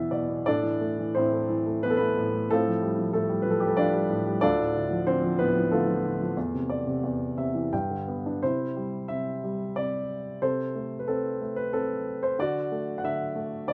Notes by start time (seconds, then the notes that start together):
Already playing: E2 B2 E3 E4 A4 C5 E5 G#5
0.11 B2 D5
0.29 B3
0.46 A2 D4 A4 D5
0.63 E3
0.81 A3
0.99 E3
1.15 A2 C4 E4 C5
1.33 A3
1.49 E3
1.66 A3
1.83 E3 B3 B4
1.90 A4
1.97 A3 B3 E4 B4
2.17 A2
2.34 A3
2.50 A2 A3 C4 F4 A4
2.67 F3
2.82 G3
2.98 F3
3.13 A2 A3 A4
3.29 G3
3.42 F3 B4
3.51 A4
3.60 G3 G4
3.67 A4
3.77 F3 D4 F4 D5
3.93 G3
4.10 A2
4.26 G3
4.41 D2 D4 F4 A4 D5
4.59 A2
4.75 D3
4.91 F3
5.06 D3 C4 C5
5.23 F3
5.39 A2 B3 B4
5.56 F3
5.71 D3 A3 F4 A4
5.88 F3
6.04 D3
6.21 F3
6.37 E2
6.54 C3
6.70 D5
6.87 C3
7.03 E2
7.38 C3 E5
7.55 E3
7.73 G2 G5
7.91 D3
8.08 B3
8.26 D4
8.43 C3 E4 C5
8.76 G3
9.08 C3 E5
9.44 G3
9.76 C3 D5
10.42 C3 A4 C5
10.75 A3
10.99 B4
11.08 C4 A4
11.41 A3
11.56 B4
11.73 C4 A4
12.23 C5
12.39 D3 F#4 D5
12.72 A3
12.98 F#5
13.04 D3 E5
13.36 A3
13.67 D3 D5